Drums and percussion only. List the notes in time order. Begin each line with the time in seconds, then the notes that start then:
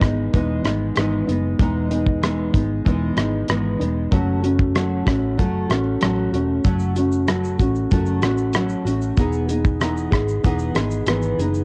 0.01 kick, cross-stick, closed hi-hat
0.34 kick, closed hi-hat
0.64 cross-stick, closed hi-hat
0.96 cross-stick, closed hi-hat
1.29 closed hi-hat
1.59 kick, closed hi-hat
1.91 closed hi-hat
2.07 kick
2.23 cross-stick, closed hi-hat
2.54 kick, closed hi-hat
2.86 kick, closed hi-hat
3.17 cross-stick, closed hi-hat
3.48 cross-stick, closed hi-hat
3.81 closed hi-hat
4.12 kick, closed hi-hat
4.44 closed hi-hat
4.59 kick
4.75 cross-stick, closed hi-hat
5.07 kick, cross-stick, closed hi-hat
5.39 kick, closed hi-hat
5.70 cross-stick, closed hi-hat
6.01 cross-stick, closed hi-hat
6.34 closed hi-hat
6.65 kick, closed hi-hat, shaker
6.79 shaker
6.96 closed hi-hat, shaker
7.12 shaker
7.28 cross-stick, closed hi-hat, shaker
7.44 shaker
7.59 kick, closed hi-hat, shaker
7.75 shaker
7.91 kick, closed hi-hat, shaker
8.06 shaker
8.22 cross-stick, closed hi-hat, shaker
8.38 shaker
8.53 cross-stick, closed hi-hat, shaker
8.69 shaker
8.87 closed hi-hat, shaker
9.02 shaker
9.17 kick, closed hi-hat, shaker
9.32 shaker
9.49 closed hi-hat, shaker
9.65 kick, shaker
9.81 cross-stick, closed hi-hat, shaker
9.97 shaker
10.12 kick, cross-stick, closed hi-hat, shaker
10.29 shaker
10.45 kick, closed hi-hat, shaker
10.59 shaker
10.75 cross-stick, closed hi-hat, shaker
10.91 shaker
11.07 cross-stick, closed hi-hat, shaker
11.22 shaker
11.40 closed hi-hat, shaker
11.54 shaker